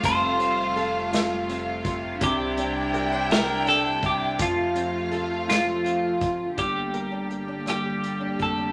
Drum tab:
HH |xxxxxx|xxxxxx|xxxxxx|xxxxxx|
SD |---o--|---o--|---o--|---r--|
BD |o----o|o----o|o----o|o----o|